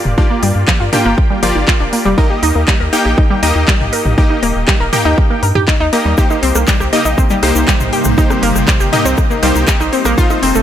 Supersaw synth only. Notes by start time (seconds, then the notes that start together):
Already playing: A#3 F4 G4 D5
0.18 A#3 F4 G4 D5
0.93 A#3 F4 G4 G5
1.43 A#3 F4 G4 D5
2.18 A#3 D#4 G4 D#5
2.93 A#3 D#4 G4 G5
3.43 A#3 D#4 G4 D#5
4.18 A#3 D#4 G4 D#5
4.93 A#3 D#4 G4 G5
5.93 A#3 D#4 G4 D#5
6.18 A#3 D#4 G4 C5
6.93 A#3 D#4 G4 D#5
7.43 A#3 D#4 G4 C5
8.18 A#3 D#4 G4 C5
8.93 A#3 D#4 G4 D#5
9.43 A#3 D#4 G4 C5
10.18 A3 D#4 F4 C5